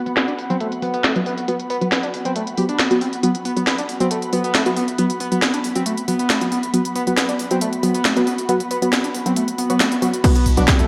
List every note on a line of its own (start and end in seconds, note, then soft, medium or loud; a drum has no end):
0.00 10.88 B3 medium
0.00 10.88 F#4 medium
0.00 10.24 F#5 medium
0.00 10.88 B5 medium
0.06 0.17 F#3 medium
0.06 0.13 B3 medium
0.06 0.17 B3 medium
0.06 0.17 F#4 medium
0.06 closed hi-hat medium
0.17 0.24 B3 medium
0.17 snare loud
0.17 closed hi-hat medium
0.28 0.32 D4 medium
0.28 closed hi-hat medium
0.39 open hi-hat loud
0.50 0.68 F#3 medium
0.50 0.68 B3 medium
0.50 0.56 C4 loud
0.50 0.68 F#4 medium
0.50 closed hi-hat medium
0.60 0.67 A3 medium
0.60 closed hi-hat medium
0.72 closed hi-hat medium
0.82 1.01 F#3 medium
0.82 0.93 B3 medium
0.82 1.01 B3 medium
0.82 1.01 F#4 medium
0.82 open hi-hat loud
0.94 1.03 B3 loud
0.94 closed hi-hat medium
1.04 1.11 A3 medium
1.04 snare loud
1.04 closed hi-hat medium
1.16 1.27 F#3 medium
1.16 1.20 B3 medium
1.16 1.27 B3 medium
1.16 1.27 F#4 loud
1.16 closed hi-hat medium
1.26 1.33 B3 medium
1.26 open hi-hat loud
1.38 closed hi-hat medium
1.48 1.60 F#3 medium
1.48 1.60 B3 medium
1.48 1.55 B3 medium
1.48 1.60 F#4 medium
1.48 closed hi-hat medium
1.60 closed hi-hat medium
1.70 1.77 B3 loud
1.70 open hi-hat loud
1.81 1.92 F#3 medium
1.81 1.92 B3 medium
1.81 1.88 B3 medium
1.81 1.92 F#4 medium
1.81 closed hi-hat medium
1.92 1.99 B3 medium
1.92 snare loud
1.92 closed hi-hat medium
2.03 2.07 D4 medium
2.03 closed hi-hat soft
2.14 open hi-hat loud
2.25 2.43 F#3 medium
2.25 2.43 B3 medium
2.25 2.32 C4 loud
2.25 2.43 F#4 medium
2.25 closed hi-hat soft
2.36 2.43 A3 medium
2.36 closed hi-hat medium
2.47 closed hi-hat soft
2.58 2.76 F#3 medium
2.58 2.76 B3 medium
2.58 2.76 F#4 medium
2.58 2.65 G4 medium
2.58 open hi-hat loud
2.69 2.78 D4 loud
2.69 closed hi-hat medium
2.79 2.86 B3 medium
2.79 snare loud
2.79 closed hi-hat medium
2.91 3.02 F#3 medium
2.91 2.97 B3 loud
2.91 3.02 B3 medium
2.91 3.02 F#4 loud
2.91 closed hi-hat soft
3.01 3.06 C4 medium
3.01 open hi-hat loud
3.13 closed hi-hat soft
3.23 3.35 F#3 medium
3.23 3.30 B3 medium
3.23 3.35 B3 medium
3.23 3.35 F#4 medium
3.23 closed hi-hat medium
3.35 closed hi-hat soft
3.45 3.52 B3 medium
3.45 open hi-hat loud
3.57 3.68 F#3 medium
3.57 3.68 B3 medium
3.57 3.63 B3 medium
3.57 3.68 F#4 medium
3.57 closed hi-hat soft
3.67 3.74 B3 medium
3.67 snare loud
3.67 closed hi-hat medium
3.78 3.82 D4 medium
3.78 closed hi-hat soft
3.89 open hi-hat loud
4.00 4.18 F#3 medium
4.00 4.18 B3 medium
4.00 4.07 C4 loud
4.00 4.18 F#4 medium
4.00 closed hi-hat soft
4.11 4.18 A3 medium
4.11 closed hi-hat medium
4.22 closed hi-hat soft
4.33 4.51 F#3 medium
4.33 4.51 B3 medium
4.33 4.43 B3 medium
4.33 4.51 F#4 medium
4.33 open hi-hat loud
4.44 4.54 B3 loud
4.44 closed hi-hat soft
4.55 4.62 A3 medium
4.55 snare loud
4.55 closed hi-hat medium
4.66 4.77 F#3 medium
4.66 4.70 B3 medium
4.66 4.77 B3 medium
4.66 4.77 F#4 loud
4.66 closed hi-hat soft
4.77 4.84 B3 medium
4.77 open hi-hat loud
4.88 closed hi-hat soft
4.98 5.10 F#3 medium
4.98 5.05 B3 medium
4.98 5.10 B3 medium
4.98 5.10 F#4 medium
4.98 closed hi-hat medium
5.10 closed hi-hat soft
5.20 5.27 B3 loud
5.20 open hi-hat loud
5.32 5.43 F#3 medium
5.32 5.38 B3 medium
5.32 5.43 B3 medium
5.32 5.43 F#4 medium
5.32 closed hi-hat soft
5.42 5.49 B3 medium
5.42 snare loud
5.42 closed hi-hat medium
5.54 5.58 D4 medium
5.54 closed hi-hat soft
5.64 open hi-hat loud
5.75 5.94 F#3 medium
5.75 5.94 B3 medium
5.75 5.82 C4 loud
5.75 5.94 F#4 medium
5.75 closed hi-hat soft
5.86 5.93 A3 medium
5.86 closed hi-hat medium
5.97 closed hi-hat soft
6.08 6.26 F#3 medium
6.08 6.18 B3 medium
6.08 6.26 B3 medium
6.08 6.26 F#4 medium
6.08 open hi-hat loud
6.19 6.29 B3 loud
6.19 closed hi-hat soft
6.30 6.37 A3 medium
6.30 snare loud
6.30 closed hi-hat medium
6.41 6.52 F#3 medium
6.41 6.52 B3 medium
6.41 6.45 B3 medium
6.41 6.52 F#4 loud
6.41 closed hi-hat soft
6.52 6.59 B3 medium
6.52 open hi-hat loud
6.63 closed hi-hat soft
6.74 6.85 F#3 medium
6.74 6.85 B3 medium
6.74 6.81 B3 medium
6.74 6.85 F#4 medium
6.74 closed hi-hat medium
6.85 closed hi-hat soft
6.96 7.02 B3 loud
6.96 open hi-hat loud
7.07 7.18 F#3 medium
7.07 7.18 B3 medium
7.07 7.13 B3 medium
7.07 7.18 F#4 medium
7.07 closed hi-hat soft
7.17 7.24 B3 medium
7.17 snare loud
7.17 closed hi-hat medium
7.29 7.33 D4 medium
7.29 closed hi-hat medium
7.39 open hi-hat loud
7.51 7.69 F#3 medium
7.51 7.69 B3 medium
7.51 7.57 C4 loud
7.51 7.69 F#4 medium
7.51 closed hi-hat medium
7.61 7.68 A3 medium
7.61 closed hi-hat medium
7.73 closed hi-hat soft
7.83 8.01 F#3 medium
7.83 8.01 B3 medium
7.83 7.94 B3 medium
7.83 8.01 F#4 medium
7.83 open hi-hat loud
7.95 8.04 B3 loud
7.95 closed hi-hat medium
8.05 8.12 A3 medium
8.05 snare loud
8.05 closed hi-hat medium
8.17 8.27 F#3 medium
8.17 8.27 B3 medium
8.17 8.20 B3 medium
8.17 8.27 F#4 loud
8.17 closed hi-hat soft
8.27 8.34 B3 medium
8.27 open hi-hat medium
8.38 closed hi-hat soft
8.49 8.61 F#3 medium
8.49 8.61 B3 medium
8.49 8.56 B3 medium
8.49 8.61 F#4 medium
8.49 closed hi-hat medium
8.60 closed hi-hat medium
8.71 8.78 B3 loud
8.71 open hi-hat loud
8.82 8.93 F#3 medium
8.82 8.93 B3 medium
8.82 8.89 B3 medium
8.82 8.93 F#4 medium
8.82 closed hi-hat medium
8.93 9.00 B3 medium
8.93 snare loud
8.93 closed hi-hat medium
9.04 9.08 D4 medium
9.04 closed hi-hat soft
9.15 open hi-hat loud
9.26 9.44 F#3 medium
9.26 9.44 B3 medium
9.26 9.32 C4 loud
9.26 9.44 F#4 medium
9.26 closed hi-hat medium
9.36 9.43 A3 medium
9.36 closed hi-hat medium
9.48 closed hi-hat medium
9.58 9.69 B3 medium
9.58 open hi-hat loud
9.70 9.81 F#3 medium
9.70 9.79 B3 loud
9.70 9.81 B3 medium
9.70 9.81 F#4 loud
9.70 closed hi-hat medium
9.80 9.87 A3 medium
9.80 snare loud
9.80 closed hi-hat medium
9.92 9.95 B3 medium
9.92 closed hi-hat medium
10.02 10.20 F#3 medium
10.02 10.09 B3 medium
10.02 10.20 B3 medium
10.02 10.20 F#4 medium
10.02 open hi-hat loud
10.14 closed hi-hat medium
10.24 10.88 B2 medium
10.24 10.36 F#3 medium
10.24 10.88 F#3 medium
10.24 10.36 B3 medium
10.24 10.31 B3 medium
10.24 10.36 F#4 medium
10.24 kick loud
10.24 closed hi-hat loud
10.24 crash loud
10.35 10.45 B3 medium
10.35 closed hi-hat medium
10.46 10.57 B1 loud
10.46 open hi-hat loud
10.57 10.68 B1 medium
10.57 10.68 F#3 medium
10.57 10.68 B3 medium
10.57 10.64 D4 medium
10.57 10.68 F#4 medium
10.57 10.88 F#5 medium
10.57 closed hi-hat medium
10.68 10.72 G4 loud
10.68 kick loud
10.68 snare loud
10.68 closed hi-hat medium
10.79 10.88 B1 medium
10.79 10.86 A3 medium
10.79 closed hi-hat medium